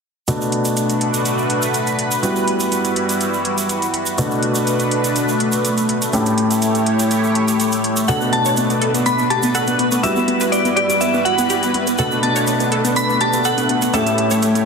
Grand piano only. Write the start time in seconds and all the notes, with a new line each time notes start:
0.28 B2 A3 B3 D4 F#4
2.23 G3 B3 E4 F#4
4.18 B2 A3 B3 D4 F#4
6.13 A2 A3 C#4 E4 G4
8.08 B2 A3 B3 D4 F#4
10.03 G3 B3 E4 F#4
11.99 B2 A3 B3 D4 F#4
13.93 A2 A3 C#4 E4 G4